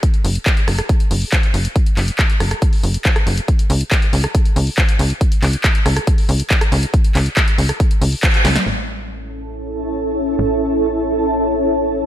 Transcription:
<<
  \new Staff \with { instrumentName = "Ambient pad" } { \time 4/4 \key a \lydian \tempo 4 = 139 r1 | r1 | r1 | r1 |
r1 | <cis' e' a'>1~ | <cis' e' a'>1 | }
  \new Staff \with { instrumentName = "Analog synth bass" } { \clef bass \time 4/4 \key a \lydian r8 fis,,8 r8 fis,,8 r8 fis,,8 r8 fis,,8 | r8 fis,,8 r8 fis,,8 r8 fis,,8 r8 fis,,8 | r8 cis,8 r8 cis,8 r8 cis,8 r8 cis,8 | r8 cis,8 r8 cis,8 r8 cis,8 r8 cis,8 |
r8 cis,8 r8 cis,8 r8 cis,8 r8 cis,8 | a,,1 | a,,1 | }
  \new DrumStaff \with { instrumentName = "Drums" } \drummode { \time 4/4 <hh bd>16 hh16 hho16 hh16 <hc hh bd>16 hh16 <hho ss>16 <hh ss>16 <hh bd>16 hh16 hho16 hho16 <hc hh bd>16 hh16 hho16 hh16 | <hh bd>16 hh16 <hc hho>16 hh16 <hc hh bd>16 hh16 <hho ss>16 <hh ss>16 <hh bd>16 hho16 hho16 hh16 <hc hh bd>16 <hh ss>16 hho16 hh16 | <hh bd>16 hh16 hho16 hh16 <hc hh bd>16 hh16 hho16 <hh ss>16 <hh bd>16 hh16 hho16 hho16 <hc hh bd>16 hh16 hho16 hh16 | <hh bd>16 hh16 <hc hho>16 hh16 <hc hh bd>16 hh16 <hho ss>16 <hh ss>16 <hh bd>16 hho16 hho16 hh16 <hc hh bd>16 <hh ss>16 hho16 hh16 |
<hh bd>16 hh16 <hc hho>16 hh16 <hc hh bd>16 hh16 hho16 <hh ss>16 <hh bd>16 hh16 hho16 hho16 <hc hh bd>16 hh16 <hho sn>16 <hh sn>16 | r4 r4 r4 r4 | r4 r4 r4 r4 | }
>>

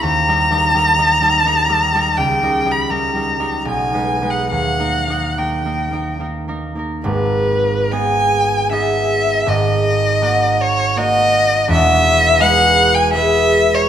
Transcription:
<<
  \new Staff \with { instrumentName = "Violin" } { \time 3/4 \key gis \minor \tempo 4 = 79 ais''2. | g''8. b''16 ais''4 gis''8. fis''16 | fis''4 g''4 r4 | b'4 gis''4 e''4 |
dis''4. cis''8 dis''4 | e''4 fis''8. gis''16 e''8. cis''16 | }
  \new Staff \with { instrumentName = "Harp" } { \time 3/4 \key gis \minor \tuplet 3/2 { <dis, ais ais'>8 <g dis' ais'>8 <g dis' ais'>8 <g dis' ais'>8 <g dis' ais'>8 <g dis' ais'>8 <g dis' ais'>8 <g dis' ais'>8 <g dis' ais'>8 } | \tuplet 3/2 { cis,8 <g dis' ais'>8 <g dis' ais'>8 <g dis' ais'>8 <g dis' ais'>8 <g dis' ais'>8 b,,8 <gis dis' b'>8 <gis dis' b'>8 } | \tuplet 3/2 { dis,8 <ais dis' ais'>8 <ais dis' ais'>8 <ais dis' ais'>8 <ais dis' ais'>8 <ais dis' ais'>8 <ais dis' ais'>8 <ais dis' ais'>8 <ais dis' ais'>8 } | <gis,, gis,>4 <b dis' gis'>4 <b dis' gis'>4 |
<gis,, gis,>4 <ais fis' ais'>4 <ais fis' ais'>4 | <e,, e,>4 <gis gis' b'>4 <gis gis' b'>4 | }
>>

